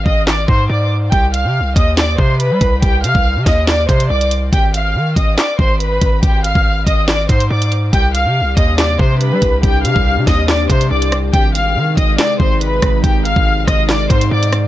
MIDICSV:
0, 0, Header, 1, 5, 480
1, 0, Start_track
1, 0, Key_signature, -3, "minor"
1, 0, Tempo, 425532
1, 1266, Time_signature, 4, 2, 24, 8
1, 16556, End_track
2, 0, Start_track
2, 0, Title_t, "Violin section"
2, 0, Program_c, 0, 48
2, 66, Note_on_c, 0, 75, 86
2, 76, Note_on_c, 0, 87, 65
2, 277, Note_off_c, 0, 75, 0
2, 282, Note_off_c, 0, 87, 0
2, 307, Note_on_c, 0, 74, 85
2, 317, Note_on_c, 0, 86, 70
2, 517, Note_off_c, 0, 74, 0
2, 523, Note_off_c, 0, 86, 0
2, 548, Note_on_c, 0, 72, 84
2, 557, Note_on_c, 0, 84, 65
2, 758, Note_off_c, 0, 72, 0
2, 763, Note_off_c, 0, 84, 0
2, 786, Note_on_c, 0, 74, 68
2, 795, Note_on_c, 0, 86, 64
2, 997, Note_off_c, 0, 74, 0
2, 1002, Note_off_c, 0, 86, 0
2, 1263, Note_on_c, 0, 79, 111
2, 1272, Note_on_c, 0, 67, 86
2, 1475, Note_off_c, 0, 79, 0
2, 1480, Note_off_c, 0, 67, 0
2, 1504, Note_on_c, 0, 77, 81
2, 1514, Note_on_c, 0, 89, 74
2, 1956, Note_off_c, 0, 77, 0
2, 1961, Note_off_c, 0, 89, 0
2, 1979, Note_on_c, 0, 75, 84
2, 1988, Note_on_c, 0, 87, 66
2, 2193, Note_off_c, 0, 75, 0
2, 2198, Note_off_c, 0, 87, 0
2, 2226, Note_on_c, 0, 74, 90
2, 2235, Note_on_c, 0, 86, 71
2, 2437, Note_off_c, 0, 74, 0
2, 2442, Note_off_c, 0, 86, 0
2, 2467, Note_on_c, 0, 72, 82
2, 2476, Note_on_c, 0, 84, 66
2, 2677, Note_off_c, 0, 72, 0
2, 2682, Note_off_c, 0, 84, 0
2, 2704, Note_on_c, 0, 71, 82
2, 2712, Note_on_c, 0, 83, 66
2, 3156, Note_off_c, 0, 71, 0
2, 3160, Note_off_c, 0, 83, 0
2, 3185, Note_on_c, 0, 79, 94
2, 3193, Note_on_c, 0, 67, 75
2, 3396, Note_off_c, 0, 79, 0
2, 3401, Note_off_c, 0, 67, 0
2, 3425, Note_on_c, 0, 77, 86
2, 3434, Note_on_c, 0, 89, 70
2, 3876, Note_off_c, 0, 77, 0
2, 3881, Note_off_c, 0, 89, 0
2, 3907, Note_on_c, 0, 75, 79
2, 3916, Note_on_c, 0, 87, 67
2, 4117, Note_off_c, 0, 75, 0
2, 4122, Note_off_c, 0, 87, 0
2, 4149, Note_on_c, 0, 74, 85
2, 4158, Note_on_c, 0, 86, 69
2, 4358, Note_off_c, 0, 74, 0
2, 4364, Note_off_c, 0, 86, 0
2, 4384, Note_on_c, 0, 72, 86
2, 4392, Note_on_c, 0, 84, 69
2, 4595, Note_off_c, 0, 72, 0
2, 4600, Note_off_c, 0, 84, 0
2, 4627, Note_on_c, 0, 74, 77
2, 4636, Note_on_c, 0, 86, 60
2, 4837, Note_off_c, 0, 74, 0
2, 4842, Note_off_c, 0, 86, 0
2, 5104, Note_on_c, 0, 79, 111
2, 5113, Note_on_c, 0, 67, 81
2, 5315, Note_off_c, 0, 79, 0
2, 5321, Note_off_c, 0, 67, 0
2, 5344, Note_on_c, 0, 77, 84
2, 5354, Note_on_c, 0, 89, 71
2, 5796, Note_off_c, 0, 77, 0
2, 5801, Note_off_c, 0, 89, 0
2, 5824, Note_on_c, 0, 75, 78
2, 5832, Note_on_c, 0, 87, 60
2, 6035, Note_off_c, 0, 75, 0
2, 6040, Note_off_c, 0, 87, 0
2, 6063, Note_on_c, 0, 74, 86
2, 6073, Note_on_c, 0, 86, 68
2, 6275, Note_off_c, 0, 74, 0
2, 6280, Note_off_c, 0, 86, 0
2, 6300, Note_on_c, 0, 72, 85
2, 6310, Note_on_c, 0, 84, 63
2, 6514, Note_off_c, 0, 72, 0
2, 6519, Note_off_c, 0, 84, 0
2, 6546, Note_on_c, 0, 71, 89
2, 6555, Note_on_c, 0, 83, 66
2, 6997, Note_off_c, 0, 71, 0
2, 7002, Note_off_c, 0, 83, 0
2, 7027, Note_on_c, 0, 79, 90
2, 7036, Note_on_c, 0, 67, 76
2, 7237, Note_off_c, 0, 79, 0
2, 7243, Note_off_c, 0, 67, 0
2, 7269, Note_on_c, 0, 77, 88
2, 7278, Note_on_c, 0, 89, 69
2, 7719, Note_off_c, 0, 77, 0
2, 7723, Note_off_c, 0, 89, 0
2, 7746, Note_on_c, 0, 75, 90
2, 7755, Note_on_c, 0, 87, 65
2, 7957, Note_off_c, 0, 75, 0
2, 7962, Note_off_c, 0, 87, 0
2, 7988, Note_on_c, 0, 74, 88
2, 7997, Note_on_c, 0, 86, 68
2, 8198, Note_off_c, 0, 74, 0
2, 8203, Note_off_c, 0, 86, 0
2, 8229, Note_on_c, 0, 72, 85
2, 8238, Note_on_c, 0, 84, 69
2, 8438, Note_off_c, 0, 72, 0
2, 8443, Note_off_c, 0, 84, 0
2, 8466, Note_on_c, 0, 74, 74
2, 8475, Note_on_c, 0, 86, 62
2, 8677, Note_off_c, 0, 74, 0
2, 8682, Note_off_c, 0, 86, 0
2, 8945, Note_on_c, 0, 79, 108
2, 8953, Note_on_c, 0, 67, 82
2, 9156, Note_off_c, 0, 79, 0
2, 9160, Note_off_c, 0, 67, 0
2, 9186, Note_on_c, 0, 77, 83
2, 9195, Note_on_c, 0, 89, 73
2, 9637, Note_off_c, 0, 77, 0
2, 9642, Note_off_c, 0, 89, 0
2, 9661, Note_on_c, 0, 75, 82
2, 9670, Note_on_c, 0, 87, 65
2, 9874, Note_off_c, 0, 75, 0
2, 9879, Note_off_c, 0, 87, 0
2, 9908, Note_on_c, 0, 74, 89
2, 9917, Note_on_c, 0, 86, 72
2, 10118, Note_off_c, 0, 74, 0
2, 10123, Note_off_c, 0, 86, 0
2, 10149, Note_on_c, 0, 72, 82
2, 10159, Note_on_c, 0, 84, 67
2, 10359, Note_off_c, 0, 72, 0
2, 10364, Note_off_c, 0, 84, 0
2, 10385, Note_on_c, 0, 71, 84
2, 10394, Note_on_c, 0, 83, 67
2, 10836, Note_off_c, 0, 71, 0
2, 10841, Note_off_c, 0, 83, 0
2, 10866, Note_on_c, 0, 79, 96
2, 10875, Note_on_c, 0, 67, 75
2, 11076, Note_off_c, 0, 79, 0
2, 11082, Note_off_c, 0, 67, 0
2, 11105, Note_on_c, 0, 77, 89
2, 11115, Note_on_c, 0, 89, 69
2, 11557, Note_off_c, 0, 77, 0
2, 11562, Note_off_c, 0, 89, 0
2, 11588, Note_on_c, 0, 75, 81
2, 11597, Note_on_c, 0, 87, 69
2, 11798, Note_off_c, 0, 75, 0
2, 11803, Note_off_c, 0, 87, 0
2, 11832, Note_on_c, 0, 74, 83
2, 11840, Note_on_c, 0, 86, 72
2, 12040, Note_off_c, 0, 74, 0
2, 12045, Note_off_c, 0, 86, 0
2, 12065, Note_on_c, 0, 72, 86
2, 12074, Note_on_c, 0, 84, 67
2, 12276, Note_off_c, 0, 72, 0
2, 12281, Note_off_c, 0, 84, 0
2, 12308, Note_on_c, 0, 74, 76
2, 12317, Note_on_c, 0, 86, 61
2, 12518, Note_off_c, 0, 74, 0
2, 12523, Note_off_c, 0, 86, 0
2, 12785, Note_on_c, 0, 79, 110
2, 12794, Note_on_c, 0, 67, 85
2, 12996, Note_off_c, 0, 79, 0
2, 13001, Note_off_c, 0, 67, 0
2, 13025, Note_on_c, 0, 77, 84
2, 13034, Note_on_c, 0, 89, 72
2, 13476, Note_off_c, 0, 77, 0
2, 13481, Note_off_c, 0, 89, 0
2, 13504, Note_on_c, 0, 75, 77
2, 13513, Note_on_c, 0, 87, 62
2, 13716, Note_off_c, 0, 75, 0
2, 13721, Note_off_c, 0, 87, 0
2, 13745, Note_on_c, 0, 74, 85
2, 13754, Note_on_c, 0, 86, 68
2, 13956, Note_off_c, 0, 74, 0
2, 13961, Note_off_c, 0, 86, 0
2, 13982, Note_on_c, 0, 72, 85
2, 13991, Note_on_c, 0, 84, 68
2, 14195, Note_off_c, 0, 72, 0
2, 14200, Note_off_c, 0, 84, 0
2, 14227, Note_on_c, 0, 71, 89
2, 14235, Note_on_c, 0, 83, 65
2, 14677, Note_off_c, 0, 71, 0
2, 14682, Note_off_c, 0, 83, 0
2, 14709, Note_on_c, 0, 79, 92
2, 14718, Note_on_c, 0, 67, 76
2, 14918, Note_off_c, 0, 79, 0
2, 14923, Note_off_c, 0, 67, 0
2, 14951, Note_on_c, 0, 77, 88
2, 14960, Note_on_c, 0, 89, 67
2, 15400, Note_off_c, 0, 77, 0
2, 15405, Note_off_c, 0, 89, 0
2, 15427, Note_on_c, 0, 75, 86
2, 15436, Note_on_c, 0, 87, 65
2, 15637, Note_off_c, 0, 75, 0
2, 15642, Note_off_c, 0, 87, 0
2, 15669, Note_on_c, 0, 74, 87
2, 15679, Note_on_c, 0, 86, 71
2, 15878, Note_off_c, 0, 74, 0
2, 15884, Note_off_c, 0, 86, 0
2, 15909, Note_on_c, 0, 72, 85
2, 15918, Note_on_c, 0, 84, 70
2, 16118, Note_off_c, 0, 72, 0
2, 16123, Note_off_c, 0, 84, 0
2, 16146, Note_on_c, 0, 74, 74
2, 16155, Note_on_c, 0, 86, 62
2, 16357, Note_off_c, 0, 74, 0
2, 16362, Note_off_c, 0, 86, 0
2, 16556, End_track
3, 0, Start_track
3, 0, Title_t, "Ambient pad"
3, 0, Program_c, 1, 92
3, 8945, Note_on_c, 1, 48, 84
3, 8945, Note_on_c, 1, 55, 75
3, 8945, Note_on_c, 1, 62, 75
3, 8946, Note_on_c, 1, 67, 94
3, 12747, Note_off_c, 1, 48, 0
3, 12747, Note_off_c, 1, 55, 0
3, 12747, Note_off_c, 1, 62, 0
3, 12747, Note_off_c, 1, 67, 0
3, 12785, Note_on_c, 1, 63, 96
3, 12786, Note_on_c, 1, 48, 83
3, 12786, Note_on_c, 1, 51, 79
3, 12786, Note_on_c, 1, 56, 79
3, 16556, Note_off_c, 1, 48, 0
3, 16556, Note_off_c, 1, 51, 0
3, 16556, Note_off_c, 1, 56, 0
3, 16556, Note_off_c, 1, 63, 0
3, 16556, End_track
4, 0, Start_track
4, 0, Title_t, "808-style bass"
4, 0, Program_c, 2, 38
4, 65, Note_on_c, 2, 32, 104
4, 526, Note_off_c, 2, 32, 0
4, 544, Note_on_c, 2, 44, 105
4, 775, Note_off_c, 2, 44, 0
4, 784, Note_on_c, 2, 44, 103
4, 1246, Note_off_c, 2, 44, 0
4, 1265, Note_on_c, 2, 36, 103
4, 1632, Note_on_c, 2, 48, 98
4, 1649, Note_off_c, 2, 36, 0
4, 1809, Note_on_c, 2, 36, 102
4, 1826, Note_off_c, 2, 48, 0
4, 1977, Note_off_c, 2, 36, 0
4, 1985, Note_on_c, 2, 39, 102
4, 2446, Note_off_c, 2, 39, 0
4, 2464, Note_on_c, 2, 48, 103
4, 2833, Note_on_c, 2, 55, 98
4, 2850, Note_off_c, 2, 48, 0
4, 2940, Note_off_c, 2, 55, 0
4, 2946, Note_on_c, 2, 36, 107
4, 3176, Note_off_c, 2, 36, 0
4, 3186, Note_on_c, 2, 36, 110
4, 3425, Note_on_c, 2, 48, 97
4, 3442, Note_off_c, 2, 36, 0
4, 3546, Note_off_c, 2, 48, 0
4, 3553, Note_on_c, 2, 36, 103
4, 3793, Note_on_c, 2, 48, 95
4, 3809, Note_off_c, 2, 36, 0
4, 3900, Note_off_c, 2, 48, 0
4, 3906, Note_on_c, 2, 39, 108
4, 4366, Note_off_c, 2, 39, 0
4, 4384, Note_on_c, 2, 48, 105
4, 4615, Note_off_c, 2, 48, 0
4, 4626, Note_on_c, 2, 36, 104
4, 5087, Note_off_c, 2, 36, 0
4, 5105, Note_on_c, 2, 32, 109
4, 5585, Note_on_c, 2, 51, 99
4, 5602, Note_off_c, 2, 32, 0
4, 5814, Note_off_c, 2, 51, 0
4, 5825, Note_on_c, 2, 32, 105
4, 6056, Note_off_c, 2, 32, 0
4, 6305, Note_on_c, 2, 32, 105
4, 6766, Note_off_c, 2, 32, 0
4, 6786, Note_on_c, 2, 32, 102
4, 7016, Note_off_c, 2, 32, 0
4, 7025, Note_on_c, 2, 32, 111
4, 7378, Note_off_c, 2, 32, 0
4, 7392, Note_on_c, 2, 32, 98
4, 7731, Note_off_c, 2, 32, 0
4, 7745, Note_on_c, 2, 32, 106
4, 8206, Note_off_c, 2, 32, 0
4, 8225, Note_on_c, 2, 44, 103
4, 8456, Note_off_c, 2, 44, 0
4, 8466, Note_on_c, 2, 44, 106
4, 8926, Note_off_c, 2, 44, 0
4, 8946, Note_on_c, 2, 36, 107
4, 9312, Note_on_c, 2, 48, 98
4, 9329, Note_off_c, 2, 36, 0
4, 9489, Note_on_c, 2, 36, 102
4, 9506, Note_off_c, 2, 48, 0
4, 9657, Note_off_c, 2, 36, 0
4, 9665, Note_on_c, 2, 39, 109
4, 10126, Note_off_c, 2, 39, 0
4, 10145, Note_on_c, 2, 48, 107
4, 10513, Note_on_c, 2, 55, 101
4, 10530, Note_off_c, 2, 48, 0
4, 10620, Note_off_c, 2, 55, 0
4, 10626, Note_on_c, 2, 36, 104
4, 10857, Note_off_c, 2, 36, 0
4, 10866, Note_on_c, 2, 36, 109
4, 11106, Note_on_c, 2, 48, 101
4, 11123, Note_off_c, 2, 36, 0
4, 11227, Note_off_c, 2, 48, 0
4, 11233, Note_on_c, 2, 36, 102
4, 11474, Note_on_c, 2, 48, 96
4, 11491, Note_off_c, 2, 36, 0
4, 11580, Note_off_c, 2, 48, 0
4, 11586, Note_on_c, 2, 39, 106
4, 12046, Note_off_c, 2, 39, 0
4, 12065, Note_on_c, 2, 48, 106
4, 12296, Note_off_c, 2, 48, 0
4, 12306, Note_on_c, 2, 36, 104
4, 12766, Note_off_c, 2, 36, 0
4, 12786, Note_on_c, 2, 32, 111
4, 13266, Note_on_c, 2, 51, 99
4, 13283, Note_off_c, 2, 32, 0
4, 13494, Note_off_c, 2, 51, 0
4, 13506, Note_on_c, 2, 32, 107
4, 13736, Note_off_c, 2, 32, 0
4, 13985, Note_on_c, 2, 32, 106
4, 14446, Note_off_c, 2, 32, 0
4, 14467, Note_on_c, 2, 32, 105
4, 14697, Note_off_c, 2, 32, 0
4, 14707, Note_on_c, 2, 32, 115
4, 15059, Note_off_c, 2, 32, 0
4, 15074, Note_on_c, 2, 32, 101
4, 15412, Note_off_c, 2, 32, 0
4, 15426, Note_on_c, 2, 32, 104
4, 15887, Note_off_c, 2, 32, 0
4, 15905, Note_on_c, 2, 44, 106
4, 16135, Note_off_c, 2, 44, 0
4, 16146, Note_on_c, 2, 44, 103
4, 16556, Note_off_c, 2, 44, 0
4, 16556, End_track
5, 0, Start_track
5, 0, Title_t, "Drums"
5, 65, Note_on_c, 9, 36, 91
5, 178, Note_off_c, 9, 36, 0
5, 304, Note_on_c, 9, 38, 104
5, 317, Note_on_c, 9, 39, 84
5, 417, Note_off_c, 9, 38, 0
5, 429, Note_off_c, 9, 39, 0
5, 544, Note_on_c, 9, 36, 92
5, 657, Note_off_c, 9, 36, 0
5, 1265, Note_on_c, 9, 36, 125
5, 1266, Note_on_c, 9, 42, 79
5, 1378, Note_off_c, 9, 36, 0
5, 1379, Note_off_c, 9, 42, 0
5, 1509, Note_on_c, 9, 42, 83
5, 1622, Note_off_c, 9, 42, 0
5, 1985, Note_on_c, 9, 36, 93
5, 1990, Note_on_c, 9, 42, 81
5, 2098, Note_off_c, 9, 36, 0
5, 2103, Note_off_c, 9, 42, 0
5, 2225, Note_on_c, 9, 38, 107
5, 2226, Note_on_c, 9, 42, 82
5, 2237, Note_on_c, 9, 39, 82
5, 2337, Note_off_c, 9, 38, 0
5, 2339, Note_off_c, 9, 42, 0
5, 2350, Note_off_c, 9, 39, 0
5, 2464, Note_on_c, 9, 36, 92
5, 2577, Note_off_c, 9, 36, 0
5, 2705, Note_on_c, 9, 42, 68
5, 2818, Note_off_c, 9, 42, 0
5, 2944, Note_on_c, 9, 42, 73
5, 2946, Note_on_c, 9, 36, 86
5, 3057, Note_off_c, 9, 42, 0
5, 3059, Note_off_c, 9, 36, 0
5, 3186, Note_on_c, 9, 36, 122
5, 3187, Note_on_c, 9, 42, 83
5, 3299, Note_off_c, 9, 36, 0
5, 3299, Note_off_c, 9, 42, 0
5, 3429, Note_on_c, 9, 42, 85
5, 3542, Note_off_c, 9, 42, 0
5, 3553, Note_on_c, 9, 36, 96
5, 3665, Note_off_c, 9, 36, 0
5, 3905, Note_on_c, 9, 36, 92
5, 3906, Note_on_c, 9, 38, 67
5, 3911, Note_on_c, 9, 42, 82
5, 4018, Note_off_c, 9, 36, 0
5, 4019, Note_off_c, 9, 38, 0
5, 4023, Note_off_c, 9, 42, 0
5, 4144, Note_on_c, 9, 38, 106
5, 4157, Note_on_c, 9, 39, 87
5, 4257, Note_off_c, 9, 38, 0
5, 4270, Note_off_c, 9, 39, 0
5, 4385, Note_on_c, 9, 36, 92
5, 4389, Note_on_c, 9, 42, 79
5, 4498, Note_off_c, 9, 36, 0
5, 4502, Note_off_c, 9, 42, 0
5, 4513, Note_on_c, 9, 42, 78
5, 4625, Note_off_c, 9, 42, 0
5, 4750, Note_on_c, 9, 42, 73
5, 4863, Note_off_c, 9, 42, 0
5, 4864, Note_on_c, 9, 42, 82
5, 4977, Note_off_c, 9, 42, 0
5, 5106, Note_on_c, 9, 36, 125
5, 5107, Note_on_c, 9, 42, 81
5, 5219, Note_off_c, 9, 36, 0
5, 5219, Note_off_c, 9, 42, 0
5, 5348, Note_on_c, 9, 42, 83
5, 5461, Note_off_c, 9, 42, 0
5, 5825, Note_on_c, 9, 36, 91
5, 5830, Note_on_c, 9, 42, 84
5, 5938, Note_off_c, 9, 36, 0
5, 5943, Note_off_c, 9, 42, 0
5, 6064, Note_on_c, 9, 38, 110
5, 6066, Note_on_c, 9, 42, 84
5, 6077, Note_on_c, 9, 39, 87
5, 6177, Note_off_c, 9, 38, 0
5, 6179, Note_off_c, 9, 42, 0
5, 6190, Note_off_c, 9, 39, 0
5, 6305, Note_on_c, 9, 36, 92
5, 6417, Note_off_c, 9, 36, 0
5, 6546, Note_on_c, 9, 42, 69
5, 6659, Note_off_c, 9, 42, 0
5, 6784, Note_on_c, 9, 42, 76
5, 6786, Note_on_c, 9, 36, 88
5, 6897, Note_off_c, 9, 42, 0
5, 6899, Note_off_c, 9, 36, 0
5, 7025, Note_on_c, 9, 42, 79
5, 7026, Note_on_c, 9, 36, 125
5, 7138, Note_off_c, 9, 36, 0
5, 7138, Note_off_c, 9, 42, 0
5, 7268, Note_on_c, 9, 42, 83
5, 7381, Note_off_c, 9, 42, 0
5, 7392, Note_on_c, 9, 36, 97
5, 7505, Note_off_c, 9, 36, 0
5, 7745, Note_on_c, 9, 36, 91
5, 7750, Note_on_c, 9, 42, 80
5, 7858, Note_off_c, 9, 36, 0
5, 7862, Note_off_c, 9, 42, 0
5, 7984, Note_on_c, 9, 38, 111
5, 7997, Note_on_c, 9, 39, 88
5, 8097, Note_off_c, 9, 38, 0
5, 8110, Note_off_c, 9, 39, 0
5, 8224, Note_on_c, 9, 36, 94
5, 8227, Note_on_c, 9, 42, 78
5, 8337, Note_off_c, 9, 36, 0
5, 8340, Note_off_c, 9, 42, 0
5, 8352, Note_on_c, 9, 42, 78
5, 8464, Note_off_c, 9, 42, 0
5, 8593, Note_on_c, 9, 42, 76
5, 8704, Note_on_c, 9, 46, 58
5, 8705, Note_off_c, 9, 42, 0
5, 8706, Note_on_c, 9, 42, 43
5, 8817, Note_off_c, 9, 46, 0
5, 8819, Note_off_c, 9, 42, 0
5, 8946, Note_on_c, 9, 36, 119
5, 8946, Note_on_c, 9, 42, 82
5, 9058, Note_off_c, 9, 36, 0
5, 9059, Note_off_c, 9, 42, 0
5, 9189, Note_on_c, 9, 42, 81
5, 9302, Note_off_c, 9, 42, 0
5, 9665, Note_on_c, 9, 36, 93
5, 9671, Note_on_c, 9, 42, 80
5, 9778, Note_off_c, 9, 36, 0
5, 9783, Note_off_c, 9, 42, 0
5, 9905, Note_on_c, 9, 38, 112
5, 9906, Note_on_c, 9, 42, 86
5, 9917, Note_on_c, 9, 39, 88
5, 10017, Note_off_c, 9, 38, 0
5, 10019, Note_off_c, 9, 42, 0
5, 10030, Note_off_c, 9, 39, 0
5, 10145, Note_on_c, 9, 36, 91
5, 10258, Note_off_c, 9, 36, 0
5, 10385, Note_on_c, 9, 42, 69
5, 10498, Note_off_c, 9, 42, 0
5, 10624, Note_on_c, 9, 42, 74
5, 10626, Note_on_c, 9, 36, 83
5, 10737, Note_off_c, 9, 42, 0
5, 10739, Note_off_c, 9, 36, 0
5, 10866, Note_on_c, 9, 36, 121
5, 10866, Note_on_c, 9, 42, 79
5, 10978, Note_off_c, 9, 42, 0
5, 10979, Note_off_c, 9, 36, 0
5, 11109, Note_on_c, 9, 42, 82
5, 11221, Note_off_c, 9, 42, 0
5, 11233, Note_on_c, 9, 36, 95
5, 11346, Note_off_c, 9, 36, 0
5, 11586, Note_on_c, 9, 36, 93
5, 11586, Note_on_c, 9, 38, 66
5, 11591, Note_on_c, 9, 42, 80
5, 11698, Note_off_c, 9, 36, 0
5, 11699, Note_off_c, 9, 38, 0
5, 11703, Note_off_c, 9, 42, 0
5, 11824, Note_on_c, 9, 38, 107
5, 11837, Note_on_c, 9, 39, 85
5, 11937, Note_off_c, 9, 38, 0
5, 11950, Note_off_c, 9, 39, 0
5, 12065, Note_on_c, 9, 36, 94
5, 12068, Note_on_c, 9, 42, 81
5, 12178, Note_off_c, 9, 36, 0
5, 12181, Note_off_c, 9, 42, 0
5, 12193, Note_on_c, 9, 42, 80
5, 12306, Note_off_c, 9, 42, 0
5, 12430, Note_on_c, 9, 42, 74
5, 12543, Note_off_c, 9, 42, 0
5, 12545, Note_on_c, 9, 42, 82
5, 12546, Note_on_c, 9, 37, 102
5, 12658, Note_off_c, 9, 42, 0
5, 12659, Note_off_c, 9, 37, 0
5, 12786, Note_on_c, 9, 36, 127
5, 12787, Note_on_c, 9, 42, 78
5, 12899, Note_off_c, 9, 36, 0
5, 12899, Note_off_c, 9, 42, 0
5, 13030, Note_on_c, 9, 42, 85
5, 13142, Note_off_c, 9, 42, 0
5, 13506, Note_on_c, 9, 36, 93
5, 13511, Note_on_c, 9, 42, 82
5, 13619, Note_off_c, 9, 36, 0
5, 13624, Note_off_c, 9, 42, 0
5, 13744, Note_on_c, 9, 38, 110
5, 13746, Note_on_c, 9, 42, 83
5, 13757, Note_on_c, 9, 39, 86
5, 13857, Note_off_c, 9, 38, 0
5, 13859, Note_off_c, 9, 42, 0
5, 13870, Note_off_c, 9, 39, 0
5, 13985, Note_on_c, 9, 36, 90
5, 14098, Note_off_c, 9, 36, 0
5, 14226, Note_on_c, 9, 42, 69
5, 14339, Note_off_c, 9, 42, 0
5, 14465, Note_on_c, 9, 42, 74
5, 14466, Note_on_c, 9, 37, 101
5, 14467, Note_on_c, 9, 36, 84
5, 14577, Note_off_c, 9, 42, 0
5, 14579, Note_off_c, 9, 36, 0
5, 14579, Note_off_c, 9, 37, 0
5, 14707, Note_on_c, 9, 36, 126
5, 14707, Note_on_c, 9, 42, 82
5, 14819, Note_off_c, 9, 36, 0
5, 14820, Note_off_c, 9, 42, 0
5, 14950, Note_on_c, 9, 42, 83
5, 15063, Note_off_c, 9, 42, 0
5, 15073, Note_on_c, 9, 36, 92
5, 15186, Note_off_c, 9, 36, 0
5, 15426, Note_on_c, 9, 36, 93
5, 15426, Note_on_c, 9, 37, 93
5, 15431, Note_on_c, 9, 42, 81
5, 15539, Note_off_c, 9, 36, 0
5, 15539, Note_off_c, 9, 37, 0
5, 15543, Note_off_c, 9, 42, 0
5, 15664, Note_on_c, 9, 38, 104
5, 15677, Note_on_c, 9, 39, 83
5, 15777, Note_off_c, 9, 38, 0
5, 15790, Note_off_c, 9, 39, 0
5, 15905, Note_on_c, 9, 36, 92
5, 15908, Note_on_c, 9, 42, 80
5, 16017, Note_off_c, 9, 36, 0
5, 16020, Note_off_c, 9, 42, 0
5, 16032, Note_on_c, 9, 42, 78
5, 16145, Note_off_c, 9, 42, 0
5, 16273, Note_on_c, 9, 42, 72
5, 16383, Note_on_c, 9, 46, 60
5, 16385, Note_off_c, 9, 42, 0
5, 16385, Note_on_c, 9, 37, 104
5, 16385, Note_on_c, 9, 42, 43
5, 16496, Note_off_c, 9, 46, 0
5, 16498, Note_off_c, 9, 37, 0
5, 16498, Note_off_c, 9, 42, 0
5, 16556, End_track
0, 0, End_of_file